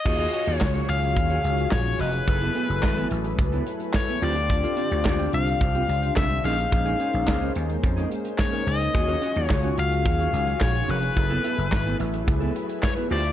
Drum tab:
CC |x---------------|----------------|----------------|----------------|
HH |-xxx-xxxxxxx-xox|xxxx-xxxxxxx-xox|xxxx-xxxxxxx-xox|xxxx-xxxxxxx-xox|
CP |----x-------x---|----x-------x---|----x-------x---|----x-------x---|
SD |----o-------o---|----o-------o---|----o-------o---|----o-------o---|
BD |o---o---o---o---|o---o---o---o---|o---o---o---o---|o---o---o---o---|

CC |----------------|----------------|
HH |xxxx-xxxxxxx-xox|xxxx-xxxxxxx-xox|
CP |----x-------x---|----x-------x---|
SD |----o-------o---|----o-------o---|
BD |o---o---o---o---|o---o---o---o---|